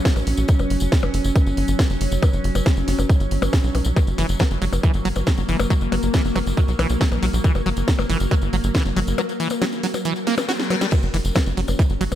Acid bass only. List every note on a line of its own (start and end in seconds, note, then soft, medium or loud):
3.96 4.00 F#3 medium
4.18 4.26 E3 medium
4.40 4.43 F#3 loud
4.62 4.65 F#3 medium
4.83 4.92 E3 medium
5.05 5.08 F#3 loud
5.27 5.30 F#3 medium
5.49 5.57 E3 medium
5.70 5.74 F#3 loud
5.92 5.95 F#3 medium
6.14 6.22 E3 medium
6.36 6.39 F#3 loud
6.57 6.61 F#3 medium
6.79 6.87 E3 medium
7.01 7.04 F#3 loud
7.23 7.26 F#3 medium
7.44 7.52 E3 medium
7.66 7.69 F#3 loud
7.88 7.91 F#3 medium
8.09 8.18 E3 medium
8.31 8.35 F#3 loud
8.53 8.56 F#3 medium
8.75 8.83 E3 medium
8.96 9.00 F#3 loud
9.18 9.21 F#3 medium
9.40 9.48 E3 medium
9.62 9.65 F#3 loud
9.83 9.87 F#3 medium
10.05 10.13 E3 medium
10.27 10.35 A#3 medium
10.49 10.52 F#4 medium
10.70 10.76 F#3 medium
10.81 10.87 G3 medium
10.92 10.95 F#3 medium
11.14 11.17 E3 medium
11.36 11.39 F#3 loud
11.57 11.61 F#3 medium
11.79 11.82 E3 medium
12.01 12.04 F#3 loud